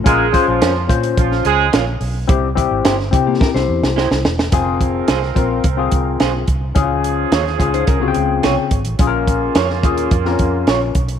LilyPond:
<<
  \new Staff \with { instrumentName = "Clean electric guitar" } { \time 4/4 \key f \minor \tempo 4 = 107 r4 <des' f' bes'>8 r4. <des' f' bes'>8 r8 | r4 <e' g' c''>8 r4. <e' g' c''>8 r8 | r4 <f' aes' c''>8 r4. <f' aes' c''>8 r8 | r4 <f' aes' des''>8 r4. <f' aes' des''>8 r8 |
r4 <f' bes' des''>8 r4. <f' bes' des''>8 r8 | }
  \new Staff \with { instrumentName = "Clean electric guitar" } { \time 4/4 \key f \minor r1 | r4. r16 <bes g'>16 bes'16 <e' c''>4. r16 | r1 | r4. r16 <ees' c''>16 <des' bes'>16 <c' aes'>4. r16 |
r1 | }
  \new Staff \with { instrumentName = "Tine electric piano" } { \time 4/4 \key f \minor <des' f' bes'>16 r16 <des' f' c''>8. r16 <des' f' c''>4~ <des' f' c''>16 r4 r16 | <c' e' g'>16 r16 <c' e' g'>8. r16 <c' e' g'>4~ <c' e' g'>16 r4 r16 | <c' f' aes'>4 r8 <c' f' bes'>8 r16 <c' f' aes'>4~ <c' f' aes'>16 r8 | <des' e' f' aes'>4 r8 <des' f' aes'>8 r16 <des f' ges' g''>4~ <des f' ges' g''>16 r8 |
<des' f' aes' bes'>4 r8 <des' f' aes'>8 r16 <c' des' f' bes'>4~ <c' des' f' bes'>16 r8 | }
  \new Staff \with { instrumentName = "Horn section" } { \time 4/4 \key f \minor <aes aes'>8. <f f'>8. r8 <f f'>8 <aes aes'>8 r4 | r1 | <f c' bes'>2.~ <f c' bes'>8 r8 | <des f aes'>2.~ <des f aes'>8 r8 |
<des bes f'>2.~ <des bes f'>8 r8 | }
  \new Staff \with { instrumentName = "Fingered electric bass" } { \clef bass \time 4/4 \key f \minor bes,,8 r16 bes,,16 f,8 bes,8 bes,,8 des,8 bes,,8 b,,8 | c,8. aes,,16 g,,8 c8 r16 c,16 e,16 c,8 c,16 e,,8 | f,,4 c,8 bes,,8 c,8 c,8 b,,8 c,8 | des,4 ees,8 des,8 c,8 des,8 c,16 r16 aes,,16 a,,16 |
bes,,4 f,8 ees,8 f,8 f,8 bes,,8 b,,8 | }
  \new DrumStaff \with { instrumentName = "Drums" } \drummode { \time 4/4 <hh bd>8 <hh bd>8 <hh sn>8 <hh bd>16 hh16 <hh bd>16 sn16 hh8 <hh sn>8 hho8 | <hh bd>8 <hh bd>8 <hh sn>16 sn16 <hh bd>8 <bd sn>16 sn8 sn16 sn16 sn16 sn16 sn16 | <hh bd>8 <hh bd>8 <hh sn>16 sn16 <hh bd>8 <hh bd>8 <hh bd>8 <hh sn>8 <hh bd>8 | <hh bd>8 hh8 <hh sn>16 sn16 <hh bd>16 hh16 <hh bd>8 hh8 <hh sn>8 <hh bd>16 hh16 |
<hh bd>8 <hh bd>8 <hh sn>16 sn16 <hh bd>16 hh16 <hh bd>16 sn16 <hh bd>8 <hh sn>8 <hh bd>16 hh16 | }
>>